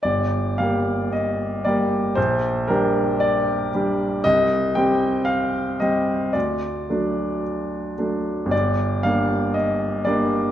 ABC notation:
X:1
M:2/4
L:1/8
Q:1/4=57
K:Gm
V:1 name="Grand piano"
d f e d | c B d2 | e g f e | d2 z2 |
d f e d |]
V:2 name="Grand piano"
G,,, [G,B,G]2 [G,B,G] | B,,, [G,DG]2 [G,DG] | C,, [G,CG]2 [G,CG] | D,, [^F,A,D]2 [F,A,D] |
G,,, [G,B,D]2 [G,B,D] |]